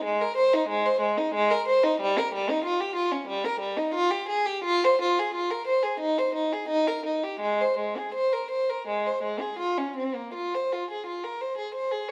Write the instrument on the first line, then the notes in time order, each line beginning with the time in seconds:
violin
0.05 G#3
0.21 A#4
0.37 C5
0.54 D#4
0.69 G#3
0.86 C5
1.01 G#3
1.18 D#4
1.35 G#3
1.51 A#4
1.68 C5
1.84 D#4
2.01 G3
2.18 A#4
2.35 G3
2.50 D#4
2.64 F4
2.80 G4
2.96 F4
3.12 C#4
3.28 G3
3.45 A#4
3.61 G3
3.77 D#4
3.94 F4
4.11 G4
4.29 G#4
4.46 G4
4.64 F4
4.84 C5
5.02 F4
5.19 G#4
5.35 F4
5.51 A#4
5.67 C5
5.83 G#4
6.00 D#4
6.18 C5
6.35 D#4
6.53 G#4
6.69 D#4
6.88 A#4
7.06 D#4
7.24 G4
7.40 G#3
7.61 C5
7.79 G#3
7.98 G#4
8.14 C5
8.33 A#4
8.51 C5
8.70 A#4
8.88 G#3
9.06 C5
9.23 G#3
9.41 G#4
9.59 F4
9.78 C#4
9.97 C4
10.15 A#3
10.34 F4
10.54 C5
10.73 F4
10.91 G#4
11.07 F4
11.24 A#4
11.41 C5
11.58 G#4
11.75 C5
11.92 G#4